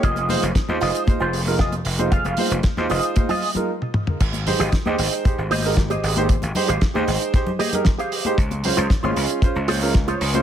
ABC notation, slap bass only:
X:1
M:4/4
L:1/16
Q:1/4=115
K:Ab
V:1 name="Slap bass" clef=bass
F,,,2 z F,,, z E,, F,,, z2 F,,,4 z F,,,2 | z F,,, z F,,, z E,, F,,, z8 z | A,,,2 z A,,, z E,, A,,, z2 A,,,4 z A,,,2 | z A,,, z A,,, z E,, A,,, z8 z |
D,,2 z D,, z A,,, D,, z2 D,,4 z D,,2 |]